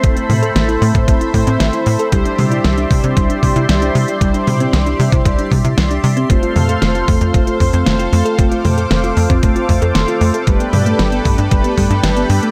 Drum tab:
HH |xxoxxxoxxxoxxxox|xxoxxxoxxxoxxxox|xxoxxxoxxxoxxxox|xxoxxxoxxxoxxxox|
SD |----o-------o---|----o-------o---|----o-------o---|----o-------o---|
T2 |--o-------------|--o-------------|--o-------o-----|--o-------------|
BD |o------oo-o-----|o-----o-o-o-----|o------oo-o-----|o-----o-o-o-----|

HH |xxoxxxoxxxoxxxox|xxoxxxoxxxoxxxox|
SD |----o-------o---|----o-------o---|
T2 |--o-------------|--o-------------|
BD |o------oo-o-----|o-----o-o-o-----|